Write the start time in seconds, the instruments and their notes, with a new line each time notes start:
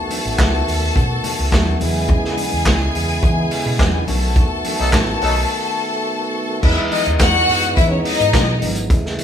Already playing: tonewheel organ D#3 A3 B3 F#4, string section A4 A5
0.10 open hi-hat, muted conga
0.25 fingered electric bass A1
0.39 fingered electric bass C#2, kick, snare, clap, closed hi-hat, high conga
0.68 fingered electric bass D#2, open hi-hat
0.95 fingered electric bass B2, kick, closed hi-hat, muted conga
1.24 open hi-hat, muted conga, low conga
1.39 fingered electric bass C#2
1.52 fingered electric bass D#2, kick, snare, clap, closed hi-hat, high conga
1.66 high conga
1.80 fingered electric bass E2, tonewheel organ C#3 G#3 E4, string section G#4 G#5, open hi-hat, high conga
2.08 kick, closed hi-hat, muted conga
2.25 snare
2.37 open hi-hat, muted conga
2.53 fingered electric bass E2
2.66 fingered electric bass C#2, kick, snare, clap, closed hi-hat, high conga
2.95 fingered electric bass E2, open hi-hat
3.23 fingered electric bass E3, kick, closed hi-hat, muted conga
3.51 open hi-hat
3.66 fingered electric bass B2
3.79 fingered electric bass E2, kick, snare, clap, closed hi-hat, high conga
3.93 high conga
4.07 fingered electric bass B1, tonewheel organ D#3 A3 B3 F#4, string section A4 A5, open hi-hat, high conga
4.36 kick, closed hi-hat, muted conga
4.64 open hi-hat, muted conga
4.79 fingered electric bass B1, horn section F#3 D#4 A4
4.93 fingered electric bass A1, kick, snare, clap, closed hi-hat, high conga
5.21 fingered electric bass B1, horn section F#3 D#4 A4, open hi-hat
6.62 fingered electric bass E2, tonewheel organ E3 G#3 B3 D#4, string section E4 E5, kick, crash, muted conga
6.91 string section D#4 D#5, open hi-hat, muted conga
7.06 fingered electric bass D#2, closed hi-hat
7.19 fingered electric bass E2, string section F#4 F#5, kick, snare, clap, closed hi-hat, high conga
7.49 fingered electric bass F#2, open hi-hat
7.62 closed hi-hat
7.76 fingered electric bass E3, string section E4 E5, kick, closed hi-hat, muted conga, low conga
7.90 string section C#4 C#5
8.04 string section D#4 D#5, open hi-hat, muted conga
8.20 fingered electric bass G#2, closed hi-hat
8.33 fingered electric bass B2, kick, snare, clap, closed hi-hat, high conga
8.62 fingered electric bass G#1, open hi-hat, high conga
8.75 closed hi-hat
8.90 fingered electric bass A1, tonewheel organ C#3 A3, kick, closed hi-hat, muted conga
9.06 snare
9.19 open hi-hat, muted conga